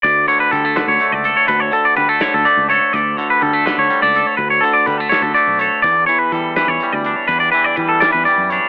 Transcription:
<<
  \new Staff \with { instrumentName = "Clean electric guitar" } { \time 6/8 \key e \dorian \tempo 4. = 83 d''8 cis''16 b'16 a'8 b'16 cis''8 d''8 cis''16 | b'16 cis''16 a'16 d''16 b'16 a'16 cis''16 a'16 d''8 cis''8 | d''8 cis''16 b'16 a'8 b'16 cis''8 d''8 cis''16 | b'16 cis''16 a'16 d''16 b'16 a'16 cis''16 a'16 d''8 cis''8 |
d''8 cis''16 b'16 a'8 b'16 cis''8 d''8 cis''16 | b'16 d''16 b'16 d''16 b'16 a'16 d''16 b'16 d''8 cis''8 | }
  \new Staff \with { instrumentName = "Clean electric guitar" } { \clef bass \time 6/8 \key e \dorian << { r4 g16 a8. a8 a'8 | r4 g16 a8. a8 a'8 | r4 g16 a8. g16 a16 a'8 | r4 g16 a8. a8 a'8 |
r4 g4 g8 d'8~ | d'4 g4 g8 d'8 | } \\ { d,8 d4 d4. | d,8 d4 d4. | d,8 d4 d4. | d,8 d4 d4. |
e,8 e4 e4. | e,8 e4 e4. | } >> }
  \new Staff \with { instrumentName = "Fingered electric bass" } { \clef bass \time 6/8 \key e \dorian d,8 r8 d8. d,16 r16 cis,8 r16 | d,8 r8 d8. d,16 r16 cis,8 r16 | d,8 r8 d8. d,16 r16 cis,8 r16 | d,8 r8 d8. d,16 r16 b,,8 r16 |
e,8 r8 e8. e,16 r16 d,8 r16 | e,8 r8 e8. e,16 r16 fis,8 r16 | }
  \new DrumStaff \with { instrumentName = "Drums" } \drummode { \time 6/8 <hh bd>8 hh8 <hh bd>8 <hh sn>8 hh8 hh8 | <hh bd>8 hh8 <hh bd>8 <hh sn>8 hh8 hh8 | <hh bd>8 hh8 <hh bd>8 <hh sn>8 hh8 hh8 | <hh bd>8 hh8 <hh bd>8 <hh sn>8 hh8 hh8 |
<hh bd>8 hh8 <hh bd>8 <hh sn>8 hh8 hh8 | <hh bd>8 hh8 <hh bd>8 <hh sn>8 hh8 hh8 | }
>>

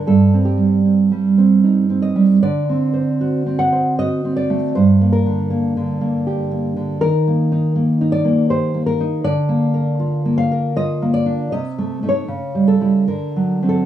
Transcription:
\new Staff \with { instrumentName = "Nylon-string guitar" } { \time 3/4 \key g \minor \tempo 4 = 78 << { a'8 g'4. r8 ees''8 | d''4. fis''8 ees''8 d''8 | c''8 bes'4. r4 | bes'4. d''8 c''8 bes'8 |
d''4. f''8 ees''8 d''8 | ees''8. cis''8. a'8 bes'8. a'16 | } \\ { \tuplet 3/2 { g,8 c'8 g8 c'8 g8 c'8 ees'8 c'8 g8 } | \tuplet 3/2 { d8 c'8 c''8 fis'8 c'8 c''8 fis'8 c'8 a8 } | \tuplet 3/2 { g,8 bes8 d8 bes8 d8 bes8 g'8 bes8 d8 } | \tuplet 3/2 { ees8 bes8 ees'8 bes8 ees'8 bes8 g'8 bes8 ees'8 } |
\tuplet 3/2 { d8 bes8 bes'8 f'8 bes8 bes'8 f'8 bes8 d'8 } | \tuplet 3/2 { c8 a8 <a ees'>8 cis8 g8 <g e'>8 d8 fis8 <fis c'>8 } | } >> }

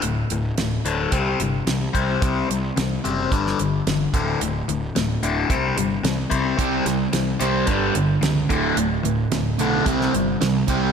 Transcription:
<<
  \new Staff \with { instrumentName = "Overdriven electric guitar" } { \clef bass \time 4/4 \key c \lydian \tempo 4 = 110 <d, a,>8 <d, a,>8 <d, a,>8 <d, a, d>8 <c g c'>8 <c g>8 <c g>8 <c g c'>8 | <c g c'>8 <c g>8 <c g>8 <c g c'>8 <g, d g>8 <g, d>8 <g, d>8 <d, a, d>8 | <d, a,>8 <d, a,>8 <d, a,>8 <d, a, d>8 <c g c'>8 <c g>8 <c g>8 <c g c'>8 | <c g c'>8 <c g>8 <c g>8 <c g c'>8 <g, d g>8 <g, d>8 <g, d>8 <d, a, d>8 |
<d, a,>8 <d, a,>8 <d, a,>8 <d, a, d>8 <c g c'>8 <c g>8 <c g>8 <c g c'>8 | }
  \new Staff \with { instrumentName = "Overdriven electric guitar" } { \clef bass \time 4/4 \key c \lydian r1 | r1 | r1 | <c g c'>8 <c g>8 <c g>8 <c g c'>8 <g, d g>8 <g, d>8 <g, d>8 <d, a, d>8 |
<d, a,>8 <d, a,>8 <d, a,>8 <d, a, d>8 <c g c'>8 <c g>8 <c g>8 <c g c'>8 | }
  \new Staff \with { instrumentName = "Picked electric bass" } { \clef bass \time 4/4 \key c \lydian d,,8 d,,8 d,,8 d,,8 c,8 g,,8 c,8 c,8 | c,8 c,8 c,8 fis,,8 g,,8 g,,8 g,,8 d,,8 | d,,8 d,,8 d,,8 d,,8 c,8 g,,8 c,8 c,8 | c,8 c,8 c,8 c,8 g,,8 g,,8 cis,8 d,,8 |
d,,8 d,,8 d,,8 b,,8 c,8 g,,8 c,8 c,8 | }
  \new DrumStaff \with { instrumentName = "Drums" } \drummode { \time 4/4 hh8 hh8 <hh sn>8 hh8 <hh bd>8 hh8 <hh sn>8 <hh bd>8 | <hh bd>8 hh8 <hh sn>8 hh8 <hh bd>16 sn16 hh8 <hh sn>8 <hh bd>8 | hh8 hh8 <hh sn>8 hh8 <hh bd>8 hh8 <hh sn>8 <hh bd>8 | <hh bd>8 <hh sn>8 <hh sn>8 hh8 <hh bd>8 hh8 <hh sn>8 <hh bd>8 |
hh8 hh8 <hh sn>8 hh8 <hh bd>16 sn16 hh8 <hh sn>8 <hh bd>8 | }
>>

